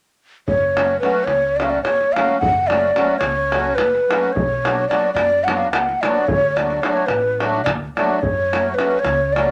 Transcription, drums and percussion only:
0.48 davul low medium
0.77 davul high medium
1.03 davul high soft
1.27 davul high medium
1.60 davul high medium
1.85 davul high medium
2.01 davul high soft
2.16 davul high medium
2.29 davul high soft
2.42 davul low medium
2.70 davul high medium
2.96 davul high medium
3.21 davul high medium
3.52 davul high medium
3.78 davul high medium
3.95 davul high soft
4.11 davul high medium
4.23 davul high soft
4.36 davul low medium
4.65 davul high medium
4.91 davul high medium
5.17 davul high medium
5.48 davul high medium
5.73 davul high medium
5.89 davul high soft
6.03 davul high medium
6.16 davul high soft
6.28 davul low medium
6.57 davul high medium
6.70 davul high soft
6.83 davul high medium
6.97 davul high soft
7.08 davul high medium
7.40 davul high medium
7.55 davul high soft
7.66 davul high medium
7.66 davul low medium
7.97 davul high medium
8.23 davul low medium
8.53 davul high medium
8.78 davul high medium
9.05 davul high medium
9.36 davul high medium

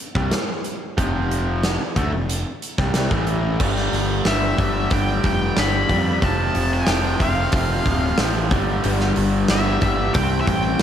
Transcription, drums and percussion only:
0.15 kick loud
0.31 snare loud
0.31 closed hi-hat medium
0.64 closed hi-hat medium
0.98 kick medium
0.98 closed hi-hat medium
1.31 closed hi-hat medium
1.63 snare loud
1.63 closed hi-hat medium
1.96 kick medium
1.96 closed hi-hat medium
2.29 closed hi-hat medium
2.62 closed hi-hat medium
2.78 kick loud
2.78 snare soft
2.94 snare loud
2.94 closed hi-hat medium
3.11 kick loud
3.27 closed hi-hat medium
3.60 kick loud
3.60 crash loud
3.77 snare soft
3.93 snare soft
3.93 open hi-hat soft
4.25 snare loud
4.25 open hi-hat medium
4.58 kick medium
4.58 open hi-hat medium
4.91 kick loud
4.91 open hi-hat medium
5.24 kick medium
5.24 open hi-hat medium
5.57 snare loud
5.57 open hi-hat medium
5.89 kick medium
5.89 open hi-hat medium
6.22 kick loud
6.22 open hi-hat medium
6.55 open hi-hat medium
6.87 snare loud
6.87 open hi-hat medium
7.20 kick medium
7.20 open hi-hat medium
7.52 kick loud
7.52 open hi-hat medium
7.86 kick medium
7.86 open hi-hat medium
8.18 snare loud
8.18 open hi-hat medium
8.51 kick loud
8.51 open hi-hat medium
8.84 open hi-hat medium
9.00 snare soft
9.16 open hi-hat medium
9.48 snare loud
9.48 open hi-hat medium
9.82 kick medium
9.82 open hi-hat medium
10.14 kick loud
10.14 open hi-hat medium
10.47 kick medium
10.47 open hi-hat medium

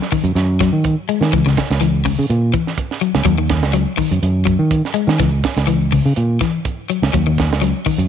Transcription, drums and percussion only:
0.02 snare soft
0.12 kick medium
0.12 open hi-hat medium
0.25 closed hi-hat soft
0.36 snare soft
0.36 closed hi-hat medium
0.60 kick medium
0.60 snare soft
0.60 closed hi-hat medium
0.84 kick medium
0.84 closed hi-hat medium
1.09 closed hi-hat soft
1.22 snare medium
1.33 kick medium
1.33 closed hi-hat medium
1.47 snare soft
1.57 kick medium
1.57 snare medium
1.57 closed hi-hat soft
1.71 snare medium
1.71 closed hi-hat soft
1.82 closed hi-hat medium
2.06 kick medium
2.06 open hi-hat medium
2.30 closed hi-hat medium
2.54 kick medium
2.54 closed hi-hat soft
2.67 snare soft
2.78 kick medium
2.78 closed hi-hat medium
2.91 snare soft
3.01 closed hi-hat medium
3.15 snare medium
3.25 kick medium
3.25 closed hi-hat medium
3.49 kick medium
3.49 snare medium
3.49 closed hi-hat soft
3.63 snare medium
3.73 closed hi-hat medium
3.98 kick medium
3.98 open hi-hat medium
4.12 closed hi-hat medium
4.23 closed hi-hat medium
4.47 kick medium
4.47 closed hi-hat soft
4.71 kick medium
4.71 closed hi-hat medium
4.85 snare soft
4.96 closed hi-hat medium
5.09 snare medium
5.20 kick medium
5.20 snare soft
5.20 closed hi-hat medium
5.44 kick medium
5.44 snare medium
5.44 closed hi-hat soft
5.57 snare medium
5.57 closed hi-hat soft
5.68 closed hi-hat medium
5.92 kick medium
5.92 open hi-hat medium
6.16 closed hi-hat medium
6.41 kick medium
6.41 snare soft
6.41 closed hi-hat soft
6.65 kick medium
6.65 closed hi-hat medium
6.90 closed hi-hat soft
7.03 snare medium
7.14 kick medium
7.14 closed hi-hat medium
7.38 kick medium
7.38 snare medium
7.38 closed hi-hat soft
7.53 snare medium
7.63 closed hi-hat medium
7.86 kick medium
7.86 open hi-hat medium
7.99 closed hi-hat medium

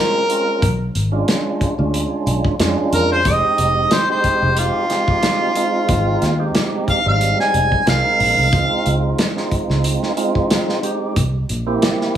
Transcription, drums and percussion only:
0.30 closed hi-hat medium
0.62 kick loud
0.62 closed hi-hat medium
0.95 closed hi-hat medium
1.28 snare loud
1.28 closed hi-hat medium
1.61 kick medium
1.61 closed hi-hat medium
1.94 closed hi-hat medium
2.27 closed hi-hat medium
2.45 kick medium
2.60 snare loud
2.60 closed hi-hat medium
2.93 closed hi-hat medium
3.25 kick loud
3.25 closed hi-hat medium
3.58 closed hi-hat medium
3.91 snare loud
3.91 closed hi-hat medium
4.24 kick medium
4.24 closed hi-hat medium
4.57 closed hi-hat medium
4.90 snare soft
4.90 closed hi-hat medium
5.08 kick medium
5.23 snare medium
5.23 closed hi-hat medium
5.56 closed hi-hat medium
5.89 kick loud
5.89 closed hi-hat medium
6.22 snare soft
6.22 closed hi-hat medium
6.55 snare loud
6.55 closed hi-hat medium
6.88 kick medium
6.88 closed hi-hat soft
7.21 closed hi-hat medium
7.40 snare soft
7.54 closed hi-hat medium
7.72 kick medium
7.87 snare loud
7.87 closed hi-hat medium
8.20 open hi-hat medium
8.53 kick loud
8.53 closed hi-hat medium
8.86 closed hi-hat medium
9.19 snare loud
9.19 closed hi-hat medium
9.37 snare soft
9.51 kick medium
9.51 closed hi-hat medium
9.70 snare soft
9.84 closed hi-hat medium
10.03 snare soft
10.17 closed hi-hat medium
10.35 kick medium
10.50 snare loud
10.50 closed hi-hat medium
10.69 snare soft
10.83 closed hi-hat medium
11.16 kick loud
11.16 closed hi-hat medium
11.49 closed hi-hat medium
11.82 snare loud
11.82 closed hi-hat medium
12.01 snare soft

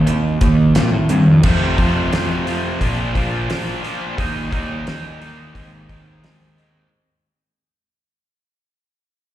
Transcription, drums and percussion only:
0.07 closed hi-hat medium
0.41 kick medium
0.41 closed hi-hat medium
0.75 snare loud
0.75 closed hi-hat medium
1.09 closed hi-hat medium
1.43 kick loud
1.43 crash medium
1.78 kick medium
1.78 open hi-hat soft
2.13 snare loud
2.13 open hi-hat medium
2.47 open hi-hat soft
2.81 kick medium
2.81 open hi-hat medium
3.15 kick medium
3.15 open hi-hat soft
3.50 snare medium
3.50 open hi-hat medium
3.84 open hi-hat soft
4.18 kick medium
4.18 open hi-hat medium
4.52 kick medium
4.52 open hi-hat soft
4.87 snare loud
4.87 open hi-hat medium
5.22 open hi-hat soft
5.55 kick medium
5.55 open hi-hat medium
5.89 kick medium
5.89 open hi-hat soft
6.24 snare medium
6.24 open hi-hat medium
6.58 open hi-hat soft

